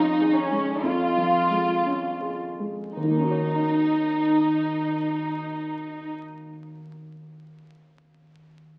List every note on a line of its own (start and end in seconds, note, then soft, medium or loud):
0.00 0.78 F2 soft
0.00 1.17 F3 soft
0.00 0.51 G#3 soft
0.00 0.39 C#4 soft
0.00 0.35 D#4 medium
0.21 0.70 G#4 soft
0.36 0.83 C#4 medium
0.51 1.02 G#3 soft
0.83 2.92 F2 soft
0.83 2.40 F4 medium
1.17 1.71 F3 soft
1.50 2.06 G#3 soft
1.86 2.44 C#4 soft
2.21 2.81 G#4 soft
2.60 2.96 G#3 soft
2.96 6.15 D#2 soft
2.96 6.14 D#4 soft
3.03 6.22 D#3 soft
3.10 6.29 A#3 soft
3.17 6.36 C#4 soft
3.24 6.43 F#4 soft
3.31 6.50 C#5 soft